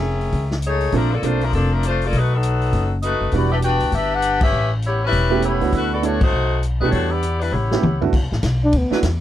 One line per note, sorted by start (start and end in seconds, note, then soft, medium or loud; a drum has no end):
0.00 0.30 F1 medium
0.00 0.52 D#3 medium
0.00 0.52 A3 medium
0.00 0.52 C#4 medium
0.00 0.52 G#4 medium
0.21 open hi-hat soft
0.32 0.90 C#2 medium
0.32 kick soft
0.32 open hi-hat soft
0.51 snare soft
0.62 closed hi-hat medium
0.66 0.93 A3 medium
0.66 0.93 D#4 medium
0.66 0.93 G#4 medium
0.66 0.93 C#5 medium
0.81 open hi-hat soft
0.92 1.21 A#1 medium
0.92 1.13 F3 medium
0.92 1.13 A3 medium
0.92 1.10 A#3 medium
0.92 1.10 C4 soft
0.92 1.10 D4 soft
0.92 1.13 D4 medium
0.92 1.10 F4 medium
0.92 1.10 A4 medium
0.92 1.13 A#4 medium
0.92 kick soft
0.92 open hi-hat soft
1.13 1.24 A#3 medium
1.13 1.24 F4 medium
1.13 1.24 A4 medium
1.13 1.24 D5 medium
1.22 1.51 B1 medium
1.22 1.42 A3 medium
1.22 1.40 A#3 soft
1.22 1.40 C4 soft
1.22 1.42 D4 medium
1.22 1.40 D4 soft
1.22 1.40 F4 soft
1.22 1.42 F4 medium
1.22 1.40 A4 soft
1.22 1.42 C5 medium
1.22 closed hi-hat medium
1.41 1.53 F3 medium
1.41 1.54 A3 medium
1.41 1.53 D4 medium
1.41 1.54 A#4 medium
1.41 open hi-hat soft
1.53 2.10 F1 medium
1.53 1.71 F3 medium
1.53 1.71 A#3 medium
1.53 1.71 D4 medium
1.53 1.71 A4 medium
1.53 kick soft
1.53 open hi-hat soft
1.74 1.84 F3 medium
1.74 1.84 A3 medium
1.74 1.84 D4 medium
1.74 1.84 A#4 medium
1.83 2.02 A3 medium
1.83 2.02 D4 medium
1.83 closed hi-hat medium
1.87 2.03 F4 medium
1.87 2.03 C5 medium
2.01 2.15 F4 medium
2.01 open hi-hat soft
2.06 2.15 A#3 medium
2.06 2.15 A4 medium
2.06 2.16 D5 medium
2.12 2.70 B1 medium
2.12 kick soft
2.12 open hi-hat soft
2.17 2.34 A3 medium
2.17 2.34 D#4 medium
2.17 2.34 F#4 medium
2.17 2.34 B4 medium
2.34 2.93 F#3 medium
2.34 2.93 B3 medium
2.34 2.93 D#4 medium
2.34 2.93 A4 medium
2.43 closed hi-hat medium
2.61 open hi-hat soft
2.73 3.18 F#1 medium
2.73 kick soft
2.73 open hi-hat soft
3.02 3.31 A3 medium
3.02 3.31 D#4 medium
3.02 3.31 F#4 medium
3.02 3.31 B4 medium
3.02 closed hi-hat soft
3.21 3.32 F#1 medium
3.31 3.78 E1 medium
3.31 4.16 G3 medium
3.31 4.16 B3 medium
3.31 4.17 D4 soft
3.31 4.17 E4 soft
3.31 4.17 F#4 medium
3.31 3.51 G4 medium
3.31 kick soft
3.31 open hi-hat soft
3.36 3.53 B3 medium
3.36 3.53 F#4 medium
3.36 3.53 D5 medium
3.51 3.57 D4 medium
3.51 3.57 G4 medium
3.51 3.57 B4 medium
3.51 3.57 E5 medium
3.62 3.92 D4 medium
3.62 3.92 F#4 medium
3.62 3.92 B4 medium
3.62 3.92 G5 medium
3.62 closed hi-hat medium
3.80 3.92 D2 medium
3.80 open hi-hat soft
3.92 4.50 G1 medium
3.92 4.12 D4 medium
3.92 4.13 G4 medium
3.92 4.12 B4 medium
3.92 4.12 E5 medium
3.92 kick soft
3.92 open hi-hat soft
4.14 4.43 D4 medium
4.14 4.41 G4 medium
4.14 4.41 B4 medium
4.14 4.43 F#5 loud
4.22 closed hi-hat medium
4.41 4.70 C#4 medium
4.41 4.70 G4 medium
4.41 4.70 B4 medium
4.41 4.70 E5 loud
4.41 kick medium
4.41 crash medium
4.53 5.10 A1 medium
4.82 5.02 E4 medium
4.82 5.02 G4 medium
4.82 5.02 C#5 medium
4.82 closed hi-hat medium
4.86 5.02 B3 medium
5.05 5.42 G3 medium
5.05 5.42 C#4 medium
5.05 5.42 E4 medium
5.05 5.42 B4 medium
5.12 5.58 E1 medium
5.12 kick soft
5.12 open hi-hat soft
5.30 5.59 A3 medium
5.30 5.59 B3 medium
5.30 5.59 C#4 medium
5.30 5.60 E4 medium
5.30 5.60 G4 medium
5.42 5.71 B3 medium
5.42 5.72 E4 medium
5.42 5.72 G4 medium
5.42 5.72 C#5 loud
5.42 closed hi-hat medium
5.60 5.72 C#2 medium
5.60 6.00 A3 medium
5.60 6.01 B3 medium
5.60 6.01 D4 medium
5.60 6.01 E4 medium
5.60 6.01 F#4 medium
5.60 open hi-hat soft
5.72 6.30 D2 medium
5.72 5.91 A3 medium
5.72 5.91 E4 medium
5.72 5.92 F#4 medium
5.72 5.92 B4 medium
5.72 kick soft
5.72 open hi-hat soft
5.93 6.03 B3 medium
5.93 6.03 F#4 medium
5.93 6.03 A4 medium
5.93 6.03 D5 medium
6.02 6.19 A3 medium
6.02 6.21 A3 medium
6.02 6.20 B3 medium
6.02 6.19 D4 soft
6.02 6.23 D4 medium
6.02 6.20 E4 medium
6.02 6.20 F#4 medium
6.02 6.21 F#4 medium
6.02 6.23 C#5 medium
6.02 closed hi-hat medium
6.21 6.60 A3 medium
6.21 6.61 D#4 medium
6.21 6.61 F#4 medium
6.21 6.61 C5 medium
6.21 kick medium
6.21 crash medium
6.33 6.78 B1 medium
6.63 closed hi-hat medium
6.80 6.92 B2 medium
6.80 7.21 G3 medium
6.80 6.90 A3 medium
6.80 7.21 B3 medium
6.80 7.21 D4 medium
6.80 6.92 D#4 medium
6.80 7.21 E4 medium
6.80 6.91 F#4 medium
6.80 7.21 G4 medium
6.80 6.92 B4 medium
6.91 7.50 E2 medium
6.91 7.09 A3 medium
6.91 7.10 D4 medium
6.91 7.10 F#4 medium
6.91 7.09 C#5 medium
6.91 kick soft
6.91 open hi-hat soft
7.11 7.42 B3 medium
7.11 7.40 E4 medium
7.11 7.41 G4 medium
7.11 7.42 D5 medium
7.23 closed hi-hat medium
7.40 7.53 G3 medium
7.40 7.52 D4 medium
7.40 7.52 E4 medium
7.40 7.52 B4 medium
7.40 open hi-hat soft
7.52 7.80 A1 medium
7.52 8.02 B3 medium
7.52 8.02 E4 medium
7.52 8.02 G4 medium
7.52 8.01 C#5 medium
7.52 mid tom soft
7.71 7.82 A3 medium
7.71 7.82 B3 soft
7.71 7.83 C#4 medium
7.71 7.82 E4 medium
7.71 7.83 G4 medium
7.71 snare medium
7.82 8.10 C#2 medium
7.82 high tom medium
8.01 8.11 A3 medium
8.01 8.12 B3 medium
8.01 8.12 D4 medium
8.01 8.12 E4 medium
8.01 8.12 F#4 medium
8.01 floor tom medium
8.13 8.23 D2 medium
8.13 kick medium
8.13 crash medium
8.23 8.31 B1 medium
8.32 8.42 A1 medium
8.32 snare soft
8.43 8.72 B1 medium
8.43 kick soft
8.43 snare medium
8.43 hi-hat pedal soft
8.43 ride medium
8.64 8.79 D4 medium
8.72 8.90 D2 medium
8.72 kick soft
8.72 ride medium
8.77 8.94 B3 medium
8.91 8.99 F#3 medium
8.91 9.01 A3 medium
8.91 9.02 B3 medium
8.91 9.02 D4 medium
8.91 9.00 D4 medium
8.91 8.99 E4 medium
8.91 9.02 E4 medium
8.91 9.02 F#4 medium
8.91 8.99 B4 loud
8.91 muted upright bass stroke soft
8.91 snare soft
9.03 9.21 E2 medium
9.03 kick soft
9.03 snare medium
9.03 hi-hat pedal soft
9.03 ride medium